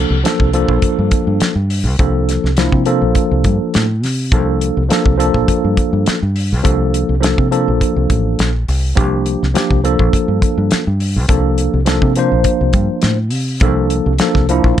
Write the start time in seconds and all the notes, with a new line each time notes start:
Already playing: F3 A#3 D4 A4
0.10 C2
0.23 F3 A#3 D4 A4, snare, closed hi-hat
0.40 C2, kick
0.53 F3 A#3 D4 A4, closed hi-hat
0.68 A#1, kick
0.82 kick, closed hi-hat
0.99 G2
1.11 kick, closed hi-hat
1.27 G2
1.40 muted fingered electric bass stroke, snare, closed hi-hat
1.56 G2
1.70 open hi-hat
1.84 C2
1.99 C2 F3 A#3 D4 A4, kick, closed hi-hat
2.29 snare, closed hi-hat
2.44 C2, snare
2.57 F3 A#3 D4 E4, snare, closed hi-hat
2.72 C3, kick
2.85 F3 A#3 D4 A4, closed hi-hat
3.02 A#1
3.15 kick, closed hi-hat
3.31 C2
3.44 G2, kick, closed hi-hat
3.74 A2, snare, closed hi-hat
4.04 C3, snare, open hi-hat
4.32 C2 F3 A#3 D4 A4, kick, closed hi-hat
4.61 closed hi-hat
4.77 C2
4.89 F3 A#3 D4 A4, snare, closed hi-hat
5.06 C2, kick
5.17 F3 A#3 D4 A4, closed hi-hat
5.34 A#1, kick
5.48 muted fingered electric bass stroke, kick, closed hi-hat
5.64 G2
5.77 kick, closed hi-hat
5.93 G2
6.06 muted fingered electric bass stroke, snare, closed hi-hat
6.22 G2
6.36 open hi-hat
6.52 C2
6.63 C2 F3 A#3 D4 A4, kick, closed hi-hat
6.94 closed hi-hat
7.09 C2
7.20 F3 A#3 D4 A4, closed hi-hat
7.24 snare
7.38 C3, kick
7.51 F3 A#3 D4 A4, closed hi-hat
7.68 A#1
7.81 kick, closed hi-hat
7.96 C2
8.10 A1, kick, closed hi-hat
8.39 A#1, snare, closed hi-hat
8.68 C2, open hi-hat
8.95 C2 F3 A#3 D4 G4, kick, closed hi-hat
9.26 closed hi-hat
9.43 C2, snare
9.54 F3 A#3 D4 G4, snare, closed hi-hat
9.71 C2, kick
9.84 F3 A#3 D4 A4, closed hi-hat
9.99 A#1, kick
10.13 kick, closed hi-hat
10.28 G2
10.42 kick, closed hi-hat
10.58 G2
10.71 muted fingered electric bass stroke, snare, closed hi-hat
10.87 G2
11.00 open hi-hat
11.16 C2
11.29 C2 F3 A#3 D4 A4, kick, closed hi-hat
11.58 closed hi-hat
11.74 C2
11.85 F3 A#3 D4 A4, snare, closed hi-hat
12.02 C3, kick
12.16 F3 A#3 D4 C5, closed hi-hat
12.32 A#1
12.44 kick, closed hi-hat
12.61 C2
12.73 G2, kick, closed hi-hat
13.02 A2, snare, closed hi-hat
13.31 C3, open hi-hat
13.60 C2 F3 A#3 D4 A4, kick, closed hi-hat
13.90 closed hi-hat
14.06 C2
14.19 F3 A#3 D4 A4, snare, closed hi-hat
14.35 C2, kick, snare
14.49 F3 A#3 D4 E4, closed hi-hat
14.64 A#1, kick